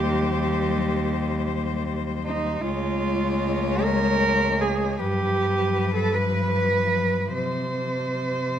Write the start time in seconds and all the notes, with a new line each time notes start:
Already playing: D#2 G3 G4 C5
2.26 D#4
2.62 C#2 G#3 F4 C#5
3.84 A#4
4.61 G#4
5.00 G2 F3 G4 B4
5.95 A4
6.15 B4
7.34 C3 C5